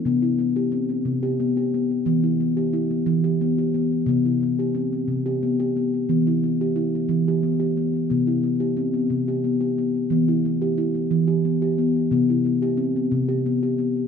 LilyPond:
\new Staff \with { instrumentName = "Steel tongue drum" } { \time 6/8 \key c \lydian \tempo 4. = 60 << { b16 e'16 b16 g'8 b8 g'16 b16 g'16 b8 | b16 e'16 b16 g'8 b8 g'16 b16 g'16 b8 | b16 e'16 b16 g'8 b8 g'16 b16 g'16 b8 | b16 e'16 b16 g'8 b8 g'16 b16 g'16 b8 |
b16 e'16 b16 g'8 b8 g'16 b16 g'16 b8 | b16 e'16 b16 g'8 b8 g'16 b16 g'16 b8 | b16 e'16 b16 g'8 b8 g'16 b16 g'16 b8 | } \\ { c8 r8 c'8 c4. | e8 r8 e'8 e4. | c8 r8 c'8 c4. | e8 r8 e'8 e4. |
c8 r8 c'8 c4. | e8 r8 e'8 e4. | c8 r8 c'8 c4. | } >> }